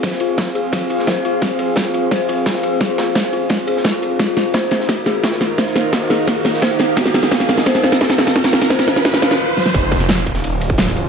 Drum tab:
CC |----------------|----------------|----------------|----------------|
RD |x-x-x-x-x-x-xxx-|x-x-x-x-x-x-x-x-|x-x-x-x-x-x-xxx-|x-x-x-x-x-x-x-x-|
HH |xxx-x-x-x-x-x-o-|xxx-x-x-x-x-x-o-|xxx-x-x-x-x-x-o-|xxx-x-x-x-x-x-o-|
SD |oo--oo--o--oo---|o---o---o---oo--|o-o-oo--o--oo---|o-o-o-ooo-o-ooo-|
BD |o---o---o---o---|o---o---o---o---|o---o---o---o---|o---o---o---o---|

CC |----------------|----------------|----------------|x---------------|
RD |x-x-x-x-x-x-xxx-|x-x-x-x-x-x-x-x-|xx-xx-x-xxx-----|x-x-x-x-x-x-x-x-|
HH |xxx-x-x-x-x-x-o-|xxx-x-x-x-x-x-o-|xxx-x-xxx-xx----|xxx-x-x-x-x-x-o-|
SD |ooo-ooo-o-ooo-o-|oooooooooooooooo|oooooooooooo--oo|---oo--o----oo--|
BD |o---o---o---o---|o---o---o---o---|o---o---o-------|o-o---o----o----|